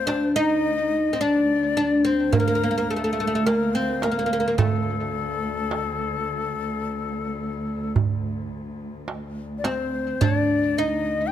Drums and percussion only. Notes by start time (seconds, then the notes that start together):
0.08 darbuka tek
2.33 darbuka dum
3.47 darbuka tek
4.02 darbuka tek
4.58 darbuka dum
5.15 darbuka ka
5.71 darbuka tek
7.96 darbuka dum
9.08 darbuka tek
9.64 darbuka tek
10.21 darbuka dum
10.77 darbuka ka